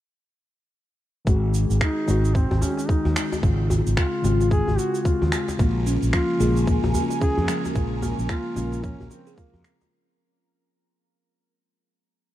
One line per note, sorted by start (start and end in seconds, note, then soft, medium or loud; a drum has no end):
1.25 1.65 G#1 medium
1.25 2.04 D#3 medium
1.25 2.05 G#3 medium
1.25 9.93 G#3 medium
1.25 2.06 C4 medium
1.25 9.93 G#4 medium
1.25 kick loud
1.25 cabasa soft
1.29 2.06 F#4 medium
1.54 cabasa medium
1.70 1.79 G#1 medium
1.70 cabasa soft
1.81 2.36 D#4 loud
1.81 finger snap medium
1.81 kick loud
1.81 cabasa soft
2.06 2.46 G#1 medium
2.06 2.85 D#3 medium
2.06 2.86 G#3 medium
2.06 2.87 C4 medium
2.06 2.87 F#4 loud
2.06 djembe tone medium
2.06 cabasa medium
2.25 cabasa soft
2.35 2.63 C4 medium
2.35 kick medium
2.35 cabasa soft
2.51 2.60 G#1 medium
2.51 djembe slap medium
2.51 djembe tone soft
2.51 djembe bass medium
2.62 2.90 C#4 medium
2.62 djembe bass medium
2.62 cabasa medium
2.77 djembe slap soft
2.77 cabasa soft
2.88 3.40 D#3 medium
2.88 3.40 G#3 medium
2.88 3.41 C4 medium
2.88 3.32 D#4 loud
2.88 3.41 F#4 medium
2.88 kick loud
2.88 cabasa soft
3.05 3.14 D#2 medium
3.05 djembe slap soft
3.05 djembe tone soft
3.05 djembe bass medium
3.16 finger snap medium
3.16 djembe slap soft
3.16 cabasa medium
3.32 djembe tone medium
3.32 cabasa soft
3.41 3.81 G#1 medium
3.41 4.21 C#3 medium
3.41 4.21 G#3 medium
3.41 4.22 C4 medium
3.41 4.23 F4 medium
3.41 kick loud
3.41 cabasa soft
3.70 djembe bass medium
3.70 cabasa medium
3.87 3.95 G#1 medium
3.87 cabasa soft
3.97 4.47 F4 medium
3.97 finger snap medium
3.97 kick loud
3.97 cabasa soft
4.22 4.62 G#1 medium
4.22 5.02 C#3 medium
4.22 5.02 G#3 medium
4.22 5.03 C4 medium
4.22 5.04 F4 loud
4.22 djembe tone medium
4.22 cabasa medium
4.40 djembe slap soft
4.40 cabasa soft
4.51 4.80 G#4 loud
4.51 kick loud
4.51 cabasa soft
4.67 4.76 G#1 medium
4.67 djembe tone soft
4.67 djembe bass medium
4.78 4.99 F#4 medium
4.78 djembe slap soft
4.78 cabasa medium
4.95 cabasa soft
4.99 5.07 F#4 medium
5.04 5.56 C#3 medium
5.04 5.57 G#3 medium
5.04 5.57 C4 medium
5.04 5.49 F4 medium
5.04 5.57 F4 medium
5.04 kick loud
5.04 cabasa soft
5.22 5.30 D#2 medium
5.22 djembe bass medium
5.32 finger snap medium
5.32 djembe tone medium
5.32 cabasa medium
5.48 djembe tone medium
5.48 cabasa soft
5.57 5.97 A#1 medium
5.57 6.37 C#3 medium
5.57 6.37 G#3 medium
5.57 5.85 A#3 medium
5.57 6.38 A#3 medium
5.57 9.88 C#4 medium
5.57 9.88 A#4 medium
5.57 7.73 G#5 medium
5.57 kick loud
5.57 cabasa soft
5.61 6.39 F4 medium
5.87 6.02 C#4 medium
5.87 cabasa medium
6.03 6.11 A#1 medium
6.03 cabasa soft
6.13 6.39 F3 medium
6.13 6.64 F4 loud
6.13 finger snap medium
6.13 kick loud
6.13 cabasa soft
6.38 6.78 A#1 medium
6.38 7.18 C#3 medium
6.38 7.18 G#3 medium
6.38 7.19 A#3 medium
6.38 6.56 G#4 medium
6.38 djembe tone medium
6.38 cabasa medium
6.42 7.20 F4 medium
6.57 cabasa soft
6.67 6.83 A#3 medium
6.67 kick loud
6.67 cabasa soft
6.84 6.92 A#1 medium
6.84 djembe slap medium
6.84 djembe tone soft
6.84 djembe bass medium
6.94 7.20 A#3 medium
6.94 djembe bass medium
6.94 cabasa medium
7.10 djembe slap soft
7.10 cabasa soft
7.21 7.73 C#3 medium
7.21 7.73 G#3 medium
7.21 7.73 A#3 medium
7.21 7.37 C#4 medium
7.21 7.74 F4 medium
7.21 7.72 G#4 loud
7.21 kick loud
7.21 cabasa soft
7.37 7.46 F2 medium
7.37 djembe slap soft
7.37 djembe tone soft
7.37 djembe bass medium
7.48 7.75 F3 loud
7.48 finger snap medium
7.48 djembe slap soft
7.48 cabasa medium
7.65 djembe tone medium
7.65 cabasa soft
7.74 8.13 A#1 medium
7.74 8.53 C#3 medium
7.74 8.54 G#3 medium
7.74 8.55 A#3 medium
7.74 8.55 F4 medium
7.74 7.91 G#4 medium
7.74 9.89 A#5 medium
7.74 kick loud
7.74 cabasa soft
8.03 8.18 A#3 loud
8.03 djembe tone soft
8.03 djembe bass medium
8.03 cabasa medium
8.19 8.27 A#1 medium
8.19 cabasa soft
8.29 8.56 A#3 medium
8.29 8.85 F4 loud
8.29 finger snap medium
8.29 kick loud
8.29 cabasa soft
8.55 8.94 A#1 medium
8.55 9.34 C#3 medium
8.55 9.35 G#3 medium
8.55 9.36 A#3 medium
8.55 8.72 C#4 medium
8.55 9.36 F4 loud
8.55 djembe tone medium
8.55 cabasa medium
8.72 djembe slap soft
8.72 cabasa soft
8.84 8.98 F3 medium
8.84 9.10 C#4 medium
8.84 kick loud
8.84 cabasa soft
9.00 9.08 A#1 medium
9.00 djembe tone soft
9.00 djembe bass medium
9.11 9.26 F3 medium
9.11 9.39 C4 medium
9.11 djembe slap soft
9.11 cabasa medium
9.27 9.33 G#4 medium
9.27 cabasa soft
9.37 9.89 C#3 medium
9.37 9.89 G#3 medium
9.37 9.81 A#3 medium
9.37 9.89 A#3 medium
9.37 9.52 F4 medium
9.37 9.90 F4 medium
9.37 kick loud
9.37 cabasa soft
9.54 9.62 F2 medium
9.54 djembe bass medium
9.64 9.80 C4 medium
9.64 finger snap medium
9.64 djembe tone medium
9.64 cabasa medium
9.81 djembe tone medium
9.81 cabasa soft